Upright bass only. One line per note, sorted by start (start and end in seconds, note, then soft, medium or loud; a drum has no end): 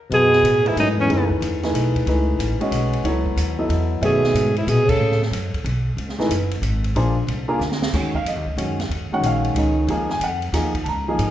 0.10 0.42 F#2 medium
0.43 0.75 A2 medium
0.76 1.07 G#2 medium
1.08 1.40 F#2 medium
1.41 1.73 E2 medium
1.73 2.05 B1 medium
2.06 2.38 C#2 medium
2.39 2.59 A1 medium
2.60 muted upright bass stroke soft
2.71 3.03 B1 medium
3.03 3.36 C#2 medium
3.36 3.68 D#2 medium
3.69 4.01 E2 medium
4.01 4.21 F#2 medium
4.23 muted upright bass stroke soft
4.34 4.66 G#2 medium
4.67 4.98 A#2 medium
4.99 5.30 A2 medium
5.31 5.51 F#2 medium
5.54 muted upright bass stroke soft
5.64 5.96 B1 loud
5.97 6.28 C#2 medium
6.29 6.61 F#1 medium
6.62 6.94 G#1 medium
6.94 7.26 A#1 medium
7.27 7.59 C2 medium
7.59 7.92 D2 medium
7.93 8.24 D#2 medium
8.24 8.35 F2 medium
8.35 8.45 D#2 medium
8.46 8.56 C#2 medium
8.57 8.88 F#2 medium
8.89 9.09 D#2 medium
9.10 muted upright bass stroke soft
9.21 9.54 A#1 medium
9.54 9.86 C#2 medium
9.87 10.19 D#2 medium
10.20 10.52 F2 medium
10.52 10.85 D#2 medium
10.86 11.18 C#2 medium
11.18 11.31 G#2 medium